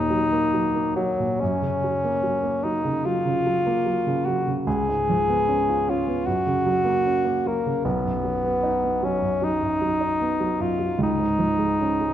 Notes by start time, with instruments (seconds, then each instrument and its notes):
Already playing: grand piano D#2 A#2, bassoon D#4
0.10 grand piano F#3
0.33 grand piano A#3
0.54 grand piano F#3
0.75 grand piano A#3
0.96 bassoon F#3, grand piano F#3
1.20 grand piano A#2
1.40 grand piano F#2, bassoon C#4
1.62 grand piano C#3
1.84 grand piano F#3
2.04 grand piano A#3
2.23 grand piano F#3
2.43 grand piano A#3
2.63 grand piano F#3, bassoon D#4
2.84 grand piano C#3
3.05 grand piano F#3, bassoon F4
3.26 grand piano C#3
3.46 grand piano F#3
3.66 grand piano A#3
3.86 grand piano F#3
4.07 grand piano C#3
4.26 grand piano F#3, bassoon F#4
4.47 grand piano C#3
4.67 grand piano C#2, bassoon G#4
4.89 grand piano G#2
5.09 grand piano F3
5.29 grand piano B3
5.47 grand piano C#4
5.69 grand piano F4
5.88 grand piano C#4, bassoon F4
6.08 grand piano B3
6.26 grand piano F#2, bassoon F#4
6.47 grand piano C#3
6.66 grand piano F#3
6.85 grand piano A#3
7.05 grand piano C#4
7.25 grand piano A#3
7.46 grand piano F#3, bassoon A#3
7.66 grand piano C#3
7.85 grand piano B1, bassoon B3
8.04 grand piano F#2
8.24 grand piano F#3
8.45 grand piano B3
8.63 grand piano D#4
8.83 grand piano B3
9.03 grand piano F#3, bassoon C#4
9.21 grand piano F#2
9.42 grand piano F#3, bassoon D#4
9.61 grand piano F#2
9.81 grand piano F#3
10.01 grand piano D#4
10.21 grand piano B3
10.40 grand piano F#3
10.60 grand piano F#2, bassoon F4
10.79 grand piano F#3
10.98 grand piano C#2
11.03 bassoon D#4
11.20 grand piano G#2
11.39 grand piano F3
11.59 grand piano G#3
11.80 grand piano C#4
12.00 grand piano G#3